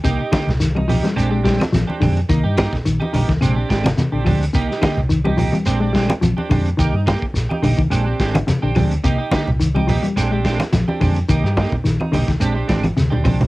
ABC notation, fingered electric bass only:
X:1
M:4/4
L:1/16
Q:"Swing 16ths" 1/4=107
K:Cm
V:1 name="Fingered electric bass" clef=bass
C,, z2 C,,4- C,, B,,,4 B,,, z F,,2 | C,, G,,2 z B,,, z B,,, C,, B,,,2 A,,,2 z B,,, D,,2 | C,, z2 C,,4- C,, B,,,4 B,,, z F,,2 | C,, G,,2 z B,,, z B,,, C,, B,,,2 A,,,2 z B,,, D,,2 |
C,, z2 C,,4- C,, B,,,4 B,,, z F,,2 | C,, G,,2 z B,,, z B,,, C,, B,,,2 A,,,2 D,,2 C,,2 |]